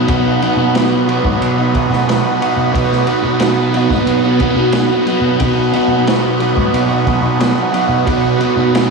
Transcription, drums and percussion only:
0.08 kick, ride
0.41 ride, low conga
0.58 high conga
0.75 snare, ride
1.06 ride, low conga
1.22 kick, high conga
1.42 ride
1.71 kick, ride, high conga, low conga
1.93 snare
2.09 snare, ride
2.39 ride, low conga
2.75 kick, ride
2.92 snare
3.07 ride
3.22 high conga
3.40 snare, ride
3.72 ride, low conga
3.89 kick, snare, high conga
4.07 ride
4.39 kick, ride, high conga
4.72 snare, ride
4.90 high conga
5.06 ride, low conga
5.40 kick, ride
5.73 ride, low conga
5.89 high conga
6.07 snare, ride
6.38 ride, low conga
6.56 kick, high conga
6.74 ride
7.04 kick, ride, high conga, low conga
7.40 snare, ride
7.72 ride, low conga
8.07 kick, ride
8.38 ride, low conga
8.56 high conga
8.75 snare, ride

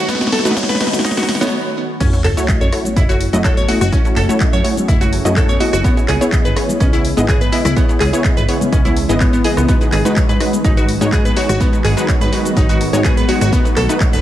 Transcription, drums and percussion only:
0.08 kick, snare, closed hi-hat, shaker
0.15 snare
0.21 snare, closed hi-hat, shaker
0.27 snare
0.32 snare, open hi-hat
0.39 snare
0.45 snare, closed hi-hat, shaker
0.51 snare
0.56 kick, snare, closed hi-hat, shaker
0.63 snare
0.69 snare, closed hi-hat, shaker
0.75 snare
0.81 snare, open hi-hat
0.87 snare
0.93 snare, closed hi-hat, shaker
0.99 snare
1.04 kick, snare, closed hi-hat, shaker
1.11 snare
1.17 snare, closed hi-hat, shaker
1.23 snare
1.29 snare, open hi-hat
1.35 snare
1.41 snare, shaker
1.47 snare
2.00 kick, closed hi-hat, crash, shaker
2.13 closed hi-hat, shaker
2.24 clap, open hi-hat
2.37 closed hi-hat, shaker
2.48 kick, clap, closed hi-hat, low conga, shaker
2.61 closed hi-hat, shaker
2.73 cross-stick, open hi-hat
2.85 closed hi-hat, high conga, low conga, shaker
2.96 kick, closed hi-hat, shaker
3.09 closed hi-hat, shaker
3.21 open hi-hat
3.33 closed hi-hat, high conga, shaker
3.44 kick, clap, closed hi-hat, shaker
3.57 closed hi-hat, high conga, shaker
3.69 open hi-hat, high conga
3.81 cross-stick, closed hi-hat, low conga, shaker
3.92 kick, closed hi-hat, shaker
4.05 closed hi-hat, high woodblock, shaker
4.16 clap, open hi-hat
4.29 closed hi-hat, shaker
4.40 kick, clap, closed hi-hat, low conga, shaker
4.53 closed hi-hat, shaker
4.65 open hi-hat
4.77 closed hi-hat, high conga, low conga, shaker
4.88 kick, closed hi-hat, shaker
5.01 closed hi-hat, low conga, shaker
5.12 open hi-hat, high woodblock
5.25 closed hi-hat, high conga, shaker
5.36 kick, clap, closed hi-hat, shaker
5.48 closed hi-hat, high conga, shaker
5.60 open hi-hat, high conga
5.73 cross-stick, closed hi-hat, shaker
5.84 kick, closed hi-hat, shaker
5.97 closed hi-hat, shaker
6.08 clap, open hi-hat
6.21 closed hi-hat, shaker
6.32 kick, clap, closed hi-hat, low conga, shaker
6.45 closed hi-hat, shaker
6.57 cross-stick, open hi-hat
6.69 closed hi-hat, high conga, low conga, shaker
6.80 kick, closed hi-hat, shaker
6.93 closed hi-hat, shaker
7.05 open hi-hat
7.16 closed hi-hat, high conga, shaker
7.28 kick, clap, closed hi-hat, shaker
7.41 closed hi-hat, high conga, shaker
7.52 open hi-hat, high conga
7.65 cross-stick, low conga, shaker
7.76 kick, closed hi-hat, shaker
7.89 closed hi-hat, high woodblock, shaker
8.00 clap, open hi-hat
8.13 closed hi-hat, shaker
8.24 kick, clap, closed hi-hat, low conga, shaker
8.37 closed hi-hat, shaker
8.49 open hi-hat
8.61 closed hi-hat, high conga, low conga, shaker
8.73 kick, closed hi-hat, shaker
8.85 closed hi-hat, low conga, shaker
8.96 open hi-hat, high woodblock
9.09 closed hi-hat, high conga, shaker
9.20 kick, clap, closed hi-hat, shaker
9.33 closed hi-hat, high conga, shaker
9.44 open hi-hat, high conga
9.57 cross-stick, closed hi-hat, shaker
9.68 kick, closed hi-hat, shaker
9.81 closed hi-hat, shaker
9.92 clap, open hi-hat
10.05 closed hi-hat, shaker
10.16 kick, clap, closed hi-hat, low conga, shaker
10.29 closed hi-hat, shaker
10.40 cross-stick, open hi-hat
10.53 closed hi-hat, high conga, low conga, shaker
10.64 kick, closed hi-hat, shaker
10.77 closed hi-hat, shaker
10.89 open hi-hat
11.01 closed hi-hat, high conga, shaker
11.12 kick, clap, closed hi-hat, shaker
11.25 closed hi-hat, high conga, shaker
11.36 open hi-hat, high conga
11.49 cross-stick, closed hi-hat, low conga, shaker
11.61 kick, closed hi-hat, shaker
11.73 closed hi-hat, high woodblock, shaker
11.84 clap, open hi-hat
11.97 closed hi-hat, shaker
12.08 kick, clap, closed hi-hat, low conga, shaker
12.21 closed hi-hat, shaker
12.33 open hi-hat
12.45 closed hi-hat, high conga, low conga, shaker
12.57 kick, closed hi-hat, shaker
12.69 closed hi-hat, low conga, shaker
12.81 open hi-hat, high woodblock
12.93 closed hi-hat, high conga, shaker
13.05 kick, clap, closed hi-hat, shaker
13.17 closed hi-hat, high conga, shaker
13.28 open hi-hat, high conga
13.41 cross-stick, closed hi-hat, shaker
13.53 kick, closed hi-hat, shaker
13.65 closed hi-hat, shaker
13.76 clap, open hi-hat
13.89 closed hi-hat, shaker
14.00 kick, clap, closed hi-hat, low conga, shaker
14.13 closed hi-hat, shaker

